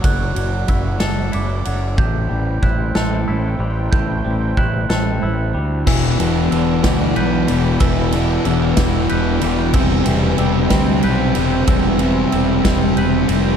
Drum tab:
CC |------|------|------|x-----|
RD |xxxxxx|------|------|-xxxxx|
SD |---o--|---o--|---o--|---o--|
BD |o-o---|o-o---|o-o---|o--o--|

CC |------|------|------|
RD |xxxxxx|xxxxxx|xxxxxx|
SD |---o--|---o--|---o--|
BD |o--o--|o--o--|o--o--|